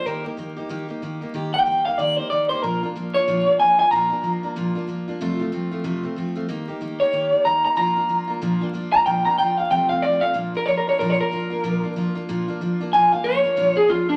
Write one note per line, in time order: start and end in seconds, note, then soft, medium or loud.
0.06 0.25 D#3 medium
0.06 0.25 A#3 medium
0.06 0.25 D#4 medium
0.06 0.23 G4 medium
0.06 0.25 A#4 loud
0.24 0.37 A#3 soft
0.24 0.38 D#4 medium
0.24 0.37 G4 medium
0.37 0.57 D#3 medium
0.37 0.57 A#3 medium
0.37 0.57 D#4 medium
0.37 0.55 G4 medium
0.57 0.69 A#3 medium
0.57 0.69 D#4 medium
0.57 0.70 G4 medium
0.69 0.89 D#3 medium
0.69 0.89 A#3 loud
0.69 0.89 D#4 loud
0.69 0.87 G4 medium
0.88 1.02 A#3 soft
0.88 1.02 D#4 medium
0.88 1.02 G4 medium
1.02 1.22 D#3 medium
1.02 1.22 A#3 medium
1.02 1.21 D#4 medium
1.02 1.20 G4 medium
1.21 1.33 A#3 medium
1.21 1.33 D#4 medium
1.21 1.34 G4 medium
1.34 1.53 D#3 medium
1.34 1.53 A#3 medium
1.34 1.53 D#4 loud
1.34 1.52 G4 loud
1.53 1.65 A#3 soft
1.53 1.66 D#4 medium
1.53 1.66 G4 medium
1.53 1.85 G5 medium
1.66 1.85 D#3 medium
1.66 1.86 A#3 medium
1.66 1.86 D#4 medium
1.66 1.85 G4 medium
1.85 1.98 A#3 soft
1.85 1.98 D#4 soft
1.85 1.99 G4 medium
1.85 1.98 F5 medium
1.98 2.18 D#3 medium
1.98 2.18 A#3 medium
1.98 2.18 D#4 medium
1.98 2.16 G4 medium
1.98 2.16 D5 medium
2.16 2.31 A#3 soft
2.16 2.31 D#4 soft
2.16 2.31 G4 medium
2.16 2.30 C5 medium
2.30 2.50 D#3 medium
2.30 2.51 A#3 medium
2.30 2.50 D#4 medium
2.30 2.49 G4 medium
2.30 2.49 D5 medium
2.49 2.63 A#3 soft
2.49 2.63 D#4 medium
2.49 2.63 G4 medium
2.49 2.62 C5 medium
2.62 2.83 A#2 medium
2.62 2.83 F3 medium
2.62 2.83 A#3 medium
2.62 2.83 D4 medium
2.62 2.82 F4 medium
2.62 2.81 A#4 medium
2.83 2.95 A#3 soft
2.83 2.96 D4 soft
2.83 2.95 F4 medium
2.96 3.15 F3 medium
2.96 3.15 A#3 medium
2.96 3.15 D4 medium
2.96 3.14 F4 medium
3.14 3.27 A#3 soft
3.14 3.27 D4 soft
3.14 3.28 F4 medium
3.14 3.58 C#5 loud
3.28 3.47 A#2 medium
3.28 3.47 F3 medium
3.28 3.47 A#3 medium
3.28 3.46 D4 medium
3.28 3.45 F4 medium
3.46 3.58 A#3 soft
3.46 3.59 D4 soft
3.46 3.59 F4 medium
3.59 3.79 F3 medium
3.59 3.79 A#3 medium
3.59 3.79 D4 medium
3.59 3.78 F4 medium
3.59 3.78 G#5 medium
3.79 3.91 A#3 soft
3.79 3.91 D4 medium
3.79 3.91 F4 medium
3.79 3.91 G#5 loud
3.91 4.11 A#2 medium
3.91 4.11 F3 medium
3.91 4.11 A#3 medium
3.91 4.10 D4 medium
3.91 4.09 F4 medium
3.91 4.85 A#5 medium
4.10 4.23 A#3 soft
4.10 4.23 D4 medium
4.10 4.23 F4 medium
4.23 4.43 F3 medium
4.23 4.43 A#3 medium
4.23 4.43 D4 medium
4.23 4.42 F4 medium
4.43 4.55 A#3 soft
4.43 4.56 D4 medium
4.43 4.56 F4 medium
4.56 4.75 A#2 medium
4.56 4.76 F3 medium
4.56 4.75 A#3 loud
4.56 4.75 D4 medium
4.56 4.74 F4 medium
4.75 4.87 A#3 soft
4.75 4.88 D4 medium
4.75 4.88 F4 medium
4.88 5.07 F3 medium
4.88 5.08 A#3 medium
4.88 5.08 D4 medium
4.88 5.06 F4 medium
5.08 5.21 A#3 medium
5.08 5.21 D4 medium
5.08 5.20 F4 medium
5.21 5.40 F2 medium
5.21 5.40 C3 medium
5.21 5.40 F3 loud
5.21 5.40 A3 loud
5.21 5.39 C4 medium
5.21 5.38 F4 loud
5.39 5.51 F3 medium
5.39 5.52 A3 medium
5.39 5.52 C4 medium
5.39 5.52 F4 medium
5.52 5.72 F3 medium
5.52 5.72 A3 medium
5.52 5.71 C4 medium
5.52 5.70 F4 medium
5.71 5.83 F3 soft
5.71 5.84 A3 medium
5.71 5.84 C4 medium
5.71 5.84 F4 medium
5.84 6.04 F2 medium
5.84 6.04 C3 loud
5.84 6.04 F3 medium
5.84 6.04 A3 medium
5.84 6.03 C4 loud
5.84 6.02 F4 loud
6.03 6.15 F3 soft
6.03 6.16 A3 medium
6.03 6.17 C4 medium
6.03 6.16 F4 medium
6.16 6.36 F3 medium
6.16 6.35 A3 medium
6.16 6.35 C4 medium
6.16 6.34 F4 medium
6.35 6.48 F3 medium
6.35 6.48 A3 medium
6.35 6.49 C4 medium
6.35 6.48 F4 medium
6.48 6.68 D#3 medium
6.48 6.68 A#3 loud
6.48 6.68 D#4 medium
6.48 6.67 G4 loud
6.68 6.80 A#3 medium
6.68 6.81 D#4 medium
6.68 6.81 G4 medium
6.81 7.00 D#3 medium
6.81 7.01 A#3 medium
6.81 7.00 D#4 medium
6.81 6.99 G4 medium
7.00 7.12 A#3 soft
7.00 7.12 D#4 soft
7.00 7.13 G4 medium
7.00 7.44 C#5 loud
7.13 7.32 D#3 medium
7.13 7.33 A#3 medium
7.13 7.32 D#4 medium
7.13 7.31 G4 medium
7.32 7.44 A#3 soft
7.32 7.45 D#4 soft
7.32 7.45 G4 medium
7.45 7.65 D#3 medium
7.45 7.64 A#3 medium
7.45 7.63 D#4 medium
7.45 7.62 G4 medium
7.45 7.63 A#5 medium
7.63 7.76 A#3 soft
7.63 7.77 D#4 medium
7.63 7.77 G4 medium
7.63 7.76 A#5 medium
7.76 7.96 A#2 medium
7.76 7.97 F3 medium
7.76 7.97 A#3 medium
7.76 7.96 D4 medium
7.76 7.95 F4 medium
7.76 8.71 A#5 loud
7.96 8.08 A#3 soft
7.96 8.09 D4 soft
7.96 8.09 F4 medium
8.09 8.29 F3 medium
8.09 8.29 A#3 medium
8.09 8.28 D4 medium
8.09 8.26 F4 medium
8.28 8.41 A#3 medium
8.28 8.41 D4 medium
8.28 8.41 F4 medium
8.41 8.61 A#2 medium
8.41 8.62 F3 medium
8.41 8.62 A#3 medium
8.41 8.61 D4 loud
8.41 8.60 F4 medium
8.61 8.73 A#3 medium
8.61 8.74 D4 medium
8.61 8.74 F4 medium
8.73 8.93 F3 medium
8.73 8.94 A#3 medium
8.73 8.93 D4 medium
8.73 8.92 F4 medium
8.92 9.05 A#3 soft
8.92 9.05 D4 medium
8.92 9.06 F4 medium
8.92 9.05 A#5 loud
9.06 9.26 A#2 medium
9.06 9.26 F3 medium
9.06 9.26 A#3 medium
9.06 9.26 D4 medium
9.06 9.24 F4 medium
9.06 9.25 G5 medium
9.25 9.38 A#3 soft
9.25 9.39 D4 medium
9.25 9.39 F4 medium
9.25 9.38 A#5 medium
9.38 9.58 F3 medium
9.38 9.59 A#3 medium
9.38 9.58 D4 medium
9.38 9.57 F4 medium
9.38 9.58 G5 medium
9.58 9.71 A#3 soft
9.58 9.71 D4 soft
9.58 9.71 F4 medium
9.58 9.70 F5 medium
9.70 9.90 F2 medium
9.70 9.90 C3 medium
9.70 9.91 F3 medium
9.70 9.90 A3 medium
9.70 9.90 C4 medium
9.70 9.89 F4 medium
9.70 9.89 G5 medium
9.89 10.01 F3 soft
9.89 10.02 A3 soft
9.89 10.02 C4 medium
9.89 10.03 F4 medium
9.89 10.02 F5 medium
10.02 10.22 F3 medium
10.02 10.22 A3 medium
10.02 10.21 C4 medium
10.02 10.21 F4 medium
10.02 10.22 D5 medium
10.21 10.33 F3 soft
10.21 10.34 A3 soft
10.21 10.35 C4 medium
10.21 10.34 F4 medium
10.21 10.34 F5 loud
10.34 10.54 A#2 medium
10.34 10.54 F3 medium
10.34 10.54 A#3 medium
10.34 10.54 D4 medium
10.34 10.53 F4 medium
10.55 10.67 A#3 soft
10.55 10.68 D4 soft
10.55 10.67 F4 medium
10.55 10.66 A#4 medium
10.66 10.87 F3 medium
10.66 10.87 A#3 medium
10.66 10.88 D4 medium
10.66 10.86 F4 medium
10.66 10.77 C#5 medium
10.77 10.88 A#4 medium
10.88 11.00 A#3 soft
10.88 11.00 D4 medium
10.88 11.00 F4 medium
10.88 10.99 C#5 medium
10.99 11.19 A#2 medium
10.99 11.20 F3 medium
10.99 11.19 A#3 medium
10.99 11.19 D4 medium
10.99 11.18 F4 medium
10.99 11.10 A#4 medium
11.10 11.20 C#5 medium
11.19 11.31 A#3 soft
11.19 11.32 D4 soft
11.19 11.32 F4 medium
11.19 12.14 A#4 loud
11.31 11.51 F3 medium
11.31 11.52 A#3 medium
11.31 11.50 D4 medium
11.31 11.49 F4 medium
11.50 11.63 A#3 medium
11.50 11.64 D4 medium
11.50 11.64 F4 medium
11.64 11.83 A#2 medium
11.64 11.83 F3 loud
11.64 11.84 A#3 loud
11.64 11.83 D4 medium
11.64 11.82 F4 loud
11.84 11.95 A#3 medium
11.84 11.96 D4 medium
11.84 11.96 F4 medium
11.96 12.16 F3 medium
11.96 12.16 A#3 medium
11.96 12.15 D4 medium
11.96 12.14 F4 medium
12.15 12.28 A#3 medium
12.15 12.28 D4 medium
12.15 12.28 F4 medium
12.29 12.48 A#2 medium
12.29 12.48 F3 loud
12.29 12.48 A#3 loud
12.29 12.48 D4 loud
12.29 12.47 F4 loud
12.48 12.61 A#3 medium
12.48 12.61 D4 medium
12.48 12.61 F4 medium
12.61 12.80 F3 medium
12.61 12.81 A#3 medium
12.61 12.80 D4 medium
12.61 12.79 F4 medium
12.80 12.93 A#3 medium
12.80 12.93 D4 medium
12.80 12.93 F4 medium
12.93 13.12 A#2 medium
12.93 13.13 F3 medium
12.93 13.13 A#3 medium
12.93 13.12 D4 medium
12.93 13.11 F4 loud
12.93 13.12 G#5 medium
13.12 13.24 A#3 soft
13.12 13.25 D4 medium
13.12 13.25 F4 medium
13.12 13.24 F5 medium
13.24 13.44 F3 medium
13.24 13.44 A#3 medium
13.24 13.44 D4 medium
13.24 13.43 F4 medium
13.24 13.74 C#5 loud
13.44 13.56 A#3 soft
13.44 13.57 D4 medium
13.44 13.56 F4 medium
13.56 13.76 A#2 medium
13.56 13.76 F3 medium
13.56 13.76 A#3 medium
13.56 13.75 D4 medium
13.56 13.74 F4 medium
13.75 13.88 A#3 soft
13.75 13.88 D4 medium
13.75 13.88 F4 medium
13.75 13.89 G#4 loud
13.88 14.08 F3 medium
13.88 14.08 A#3 medium
13.88 14.08 D4 medium
13.88 14.08 F4 medium
13.88 14.07 F4 medium
14.08 14.17 A#3 soft
14.08 14.17 D4 loud
14.08 14.17 D4 medium
14.08 14.17 F4 medium